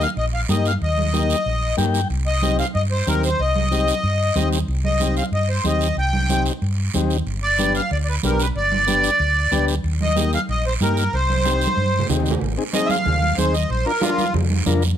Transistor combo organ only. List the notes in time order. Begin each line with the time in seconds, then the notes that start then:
0.49 A#3 D#4 G4
1.13 A#3 D#4 G4
1.77 A#3 D#4 G4 G5
2.43 C4 D#4 G4
3.07 C4 D#4 G4
3.71 C4 D#4 G4
4.36 C4 D#4 G4
5.01 C4 D#4 G4
5.65 C4 D#4 G4
6.30 C4 D#4 G4
6.94 C4 D#4 G4
7.59 B3 D4 G4
8.24 B3 D4 G4
8.87 B3 D4 G4
9.52 B3 D4 G4
10.16 A#3 D#4 G4
10.81 A#3 D#4 G4
11.45 C4 D#4 G4
12.09 C4 D#4 G4
12.57 C4 D#4 G#4
12.73 C4 D#4 G#4
13.38 C4 D#4 G#4
13.86 D4 F4 A#4
14.02 D4 F4 A#4
14.66 D4 F4 A#4